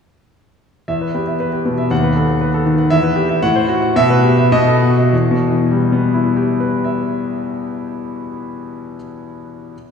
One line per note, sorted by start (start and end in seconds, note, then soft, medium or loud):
0.88 1.88 E2 medium
0.88 1.09 E5 medium
1.01 1.22 B4 medium
1.14 1.35 B3 medium
1.14 1.35 G4 soft
1.27 1.48 E5 medium
1.40 1.60 B4 medium
1.53 1.73 G4 medium
1.65 1.86 B2 medium
1.65 1.86 B3 medium
1.78 1.91 E5 medium
1.91 2.88 D#2 medium
1.91 2.11 F#5 medium
2.04 2.24 B4 medium
2.16 2.36 A4 medium
2.28 2.48 F#5 medium
2.41 2.61 B4 medium
2.54 2.74 A4 medium
2.66 2.86 D#3 medium
2.78 2.91 F#5 medium
2.90 3.41 E2 medium
2.90 3.11 E5 loud
3.03 3.24 B4 medium
3.16 3.37 G4 medium
3.29 3.43 E5 medium
3.42 3.95 A2 medium
3.42 3.64 F#5 loud
3.56 3.77 C5 medium
3.69 3.90 F#4 medium
3.82 3.96 F#5 medium
3.96 4.50 B2 loud
3.96 4.18 E5 loud
4.10 4.32 B4 medium
4.24 4.46 G4 medium
4.38 4.52 E5 medium
4.52 5.10 B2 loud
4.52 4.76 D#5 loud
4.67 4.91 A4 medium
4.82 5.06 F#4 medium
4.97 5.12 D#5 medium
5.13 8.96 E2 medium
5.31 8.96 B2 medium
5.51 8.96 E3 medium
5.71 8.96 G3 medium
5.92 8.96 B3 medium
6.14 8.96 E4 medium
6.37 8.96 G4 medium
6.60 8.96 B4 medium
6.84 8.96 E5 medium